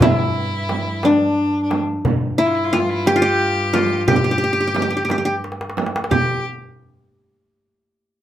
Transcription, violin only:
0.03 E4
1.06 D4
1.63 D4
2.39 E4
2.47 F4
2.55 E4
2.64 F4
2.73 E4
2.80 F4
2.89 E4
3.08 G4
3.21 G4
4.08 G4
6.11 G4

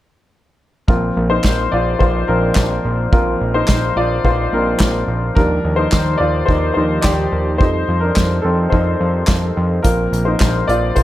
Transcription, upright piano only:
0.88 F3 A#3 C4 F4 A#4
1.30 D#4 C5
1.72 F4 D5
1.99 F4 C5
2.28 F3 A#3 C4 D4 A#4
3.12 F3 A#3 C4 F4 A#4
3.54 D#4 C5
3.97 F4 D5
4.25 F4 C5
4.53 F3 A#3 C4 D4 A#4
5.35 F3 G3 D4 A#4
5.76 D#4 C5
6.18 F4 D5
6.46 D#4 C5
6.74 F3 G3 D4 D#4 C5
7.01 G4 D5
7.58 G3 D#4 A4 C5
8.00 D4 A#4
8.42 C4 A4
8.70 D#4 C5
9.83 F3 A#3 C4 F4 A#4
10.25 D#4 C5
10.68 F4 D5
10.95 F4 C5

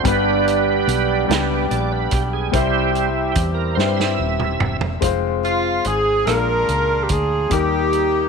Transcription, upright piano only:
0.03 G2 G3 B3 D4
0.07 B4
1.28 G3 B3 D4 B4
2.52 C3 G3 C4 E4
2.56 C5
3.77 G3 C4 E4 B4
3.87 C5
5.01 G#3 C4 F4
5.05 C5
6.25 A#2 G#3 D4 F4
6.29 A#4
7.49 D#3 G3 A#3 D#4
7.54 A#4

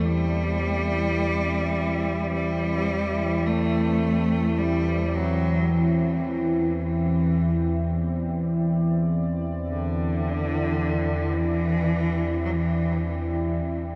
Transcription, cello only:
0.05 G3
2.33 G3
3.46 A3
4.58 G3
5.15 F#3
5.73 E3
6.84 E3
9.68 D3
11.34 E3
12.45 F#3
12.51 E3

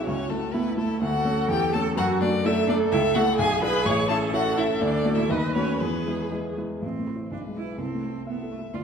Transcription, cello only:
0.07 C#4
0.31 A3
0.56 B3
0.79 A3
1.04 F#4
1.50 G4
1.73 A4
1.97 F#4
2.21 D4
2.44 E4
2.67 D4
2.92 E4
3.15 F#4
3.40 G#4
3.63 B4
3.86 C#5
4.09 A4
4.33 F#4
4.58 E4
4.83 D4
5.14 E4
5.31 D#4
5.55 C#4
5.82 B3
6.82 C4
7.32 D4
7.56 E4
7.80 C4
8.27 B3
8.51 A3
8.74 F4

